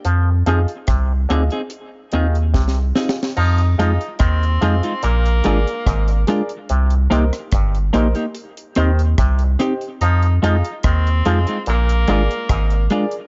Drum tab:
CC |------------------------------------------------|x-----------------------------------------------|------------------------------------------------|------------------------------------------------|
HH |x-----x--x--x-----x--x--x-----x--x--------------|---x--x--x--x--x--x--x--x--x--x--x--x--x--x--x--|x--x--x--x--x--x--x--x--x--x--x--x--x--x--x--x--|x--x--x--x--x--x--x--x--x--x--x--x--x--x--x--x--|
SD |------------r-----------------------o-o---o-o-o-|------------r-----------------------r-----------|---------r--r-----------------------r-----r-----|------------r-----------------------r-----------|
BD |------------o-----------------------o-----------|------------o-----------------------o-----------|------------o-----------------------o-----------|------------o-----------------------o-----------|